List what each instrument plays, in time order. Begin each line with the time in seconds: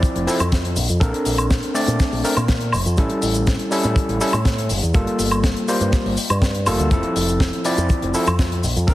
Already playing: tine electric piano F3 C4 E4 D5
0.03 kick, closed hi-hat, shaker
0.15 fingered electric bass F1, closed hi-hat
0.27 tine electric piano F3 C4 E4 A4, open hi-hat, shaker
0.40 fingered electric bass F2, closed hi-hat, high woodblock, shaker
0.52 kick, snare, closed hi-hat, shaker
0.65 closed hi-hat
0.76 fingered electric bass A#1, open hi-hat, shaker
0.89 fingered electric bass F2, closed hi-hat, shaker
1.00 fingered electric bass A#1, tine electric piano C4 D4 A4 A#4, kick, closed hi-hat, shaker
1.14 closed hi-hat
1.25 fingered electric bass A#1, open hi-hat, shaker
1.38 closed hi-hat, high woodblock, shaker
1.51 kick, snare, closed hi-hat, shaker
1.63 closed hi-hat
1.74 tine electric piano A3 C4 D4 D5, open hi-hat, shaker
1.87 fingered electric bass A#2, closed hi-hat, shaker
2.00 kick, snare, closed hi-hat, shaker
2.12 fingered electric bass A#1, open hi-hat
2.24 tine electric piano A3 C4 D4 A#4, open hi-hat, shaker
2.37 fingered electric bass A#2, closed hi-hat, high woodblock, shaker
2.48 kick, snare, closed hi-hat, shaker
2.61 closed hi-hat
2.72 fingered electric bass F1, open hi-hat, high woodblock, shaker
2.86 fingered electric bass F2, closed hi-hat, shaker
2.97 fingered electric bass A1, tine electric piano G3 C#4 E4 A4, kick, closed hi-hat, shaker
3.10 closed hi-hat
3.22 fingered electric bass A1, open hi-hat, shaker
3.34 closed hi-hat, shaker
3.47 kick, snare, closed hi-hat, shaker
3.59 closed hi-hat
3.71 tine electric piano G3 C#4 E4 A4, open hi-hat, shaker
3.83 fingered electric bass A2, closed hi-hat, shaker
3.96 muted fingered electric bass stroke, kick, closed hi-hat, shaker
4.09 fingered electric bass A1, closed hi-hat
4.20 tine electric piano G3 C#4 E4 A4, open hi-hat, shaker
4.33 fingered electric bass A2, closed hi-hat, high woodblock, shaker
4.45 kick, snare, closed hi-hat, shaker
4.58 closed hi-hat
4.69 fingered electric bass G1, open hi-hat, shaker
4.82 fingered electric bass E2, closed hi-hat, shaker
4.94 fingered electric bass G1, tine electric piano G3 A#3 F4 A4, kick, closed hi-hat, shaker
5.07 closed hi-hat
5.19 fingered electric bass G1, open hi-hat, shaker
5.31 closed hi-hat, high woodblock, shaker
5.44 kick, snare, closed hi-hat, shaker
5.56 closed hi-hat
5.68 tine electric piano G3 A#3 F4 C5, open hi-hat, shaker
5.80 fingered electric bass G2, closed hi-hat, shaker
5.92 kick, snare, closed hi-hat, shaker
6.05 fingered electric bass G1, open hi-hat
6.17 open hi-hat, shaker
6.30 fingered electric bass G2, closed hi-hat, high woodblock, shaker
6.42 kick, snare, closed hi-hat, shaker
6.55 closed hi-hat
6.66 fingered electric bass F1, tine electric piano G3 A#3 F4 A4, open hi-hat, high woodblock, shaker
6.79 fingered electric bass D2, closed hi-hat, shaker
6.91 fingered electric bass F1, tine electric piano F3 C4 E4 A4, kick, closed hi-hat, shaker
7.03 closed hi-hat
7.16 fingered electric bass F1, open hi-hat, shaker
7.28 closed hi-hat, shaker
7.40 kick, snare, closed hi-hat, shaker
7.53 closed hi-hat
7.65 tine electric piano F3 C4 E4 D5, open hi-hat, shaker
7.77 fingered electric bass F2, closed hi-hat, shaker
7.89 kick, closed hi-hat, shaker
8.02 fingered electric bass F1, closed hi-hat
8.14 tine electric piano F3 C4 E4 A4, open hi-hat, shaker
8.27 fingered electric bass F2, closed hi-hat, high woodblock, shaker
8.39 kick, snare, closed hi-hat, shaker
8.52 closed hi-hat
8.64 fingered electric bass A#1, open hi-hat, shaker
8.76 fingered electric bass F2, closed hi-hat, shaker
8.87 fingered electric bass A#1, tine electric piano C4 D4 A4 A#4, kick, closed hi-hat, shaker